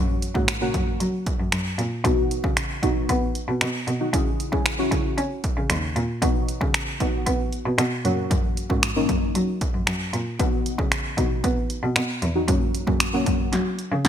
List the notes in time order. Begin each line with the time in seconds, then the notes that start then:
Already playing: F#2 A#3 C#4 F#4
0.22 closed hi-hat
0.35 G#2 A#3 C#4 F#4, kick
0.48 finger snap, closed hi-hat
0.61 A#3 C#4 F#4
0.74 F#2, kick, closed hi-hat
1.00 F#3, closed hi-hat
1.26 kick, closed hi-hat
1.40 F#2
1.52 F#2, finger snap, closed hi-hat
1.79 A#2, closed hi-hat
2.05 B2 B3 D#4 F#4, kick, closed hi-hat
2.31 closed hi-hat
2.44 C#3, kick
2.57 finger snap, closed hi-hat
2.83 B2 B3 D#4 F#4, kick, closed hi-hat
3.09 B3, kick, closed hi-hat
3.35 closed hi-hat
3.48 B2
3.61 B2, finger snap, closed hi-hat
3.88 B2, closed hi-hat
4.00 D#4 F#4
4.13 C#3 C#4 E4 G#4, kick, closed hi-hat
4.40 closed hi-hat
4.52 C#3 C#4 E4 G#4, kick
4.66 finger snap, closed hi-hat
4.78 C#4 E4 F#4
4.92 C#3, kick, closed hi-hat
5.18 C#4, closed hi-hat
5.44 kick, closed hi-hat
5.57 C#3
5.70 D#2, finger snap, closed hi-hat
5.96 A#2, closed hi-hat
6.22 B2 B3 D#4 F#4, kick, closed hi-hat
6.49 closed hi-hat
6.61 C#3, kick
6.74 finger snap, closed hi-hat
7.00 B2 B3 D#4 F#4, kick, closed hi-hat
7.27 B3, kick, closed hi-hat
7.53 closed hi-hat
7.66 B2
7.78 B2, finger snap, closed hi-hat
8.05 F#2 A#3 C#4 F#4, closed hi-hat
8.31 F#2, kick, closed hi-hat
8.57 closed hi-hat
8.70 G#2 A#3 C#4 F#4, kick
8.83 finger snap, closed hi-hat
8.96 A#3 C#4 D#4
9.09 F#2, kick, closed hi-hat
9.35 F#3, closed hi-hat
9.61 kick, closed hi-hat
9.74 F#2
9.87 F#2, finger snap, closed hi-hat
10.13 A#2, closed hi-hat
10.39 B2 B3 D#4 F#4, kick, closed hi-hat
10.66 closed hi-hat
10.79 C#3, kick
10.92 finger snap, closed hi-hat
11.18 B2 B3 D#4 F#4, kick, closed hi-hat
11.44 B3, kick, closed hi-hat
11.70 closed hi-hat
11.83 B2
11.96 B2, finger snap, closed hi-hat
12.22 E2, closed hi-hat
12.35 D#4 F#4
12.48 F#2 A#3 C#4 F#4, kick, closed hi-hat
12.75 closed hi-hat
12.87 F#2 A#3 C#4 F#4, kick
13.00 finger snap, closed hi-hat
13.13 A#3 C#4 F#4
13.26 F#2, kick, closed hi-hat
13.53 F#3, snare, closed hi-hat
13.79 closed hi-hat
13.92 C#3
14.05 F#2, snare, closed hi-hat